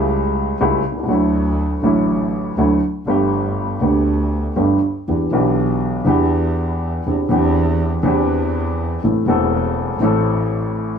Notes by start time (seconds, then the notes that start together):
Already playing: C#2 C#3 G3 A3 E4
0.60 C#2 C#3 G3 A3 E4
0.85 C2
0.91 B1
0.98 C2
1.03 C#2
1.08 D2 D3 F#3 A3 E4
1.81 A1 A2 D3 F#3 A3 E4
2.56 D2 D3 F#3 A3 E4
3.05 G1 G2 D3 A3 B3
3.10 G4
3.79 D2 D3 A3 B3
3.83 G4
4.56 G1 G2 D3 A3 B3 G4
5.08 E2 E3 B3 D4 G4
5.31 B1 B2 E3 B3 D4 G4
6.06 E2 E3 B3 D4 G4
7.06 E2 E3 C4 D4 G4
7.30 E2 E3 C4 D4 G4
8.03 E2 E3 C4 D4
8.07 G4
9.03 A1 A2 E3 A3 C4 A4
9.26 E1 E2 E3 A3 C4 A4
10.00 A1 A2 E3 A3 C4
10.04 A4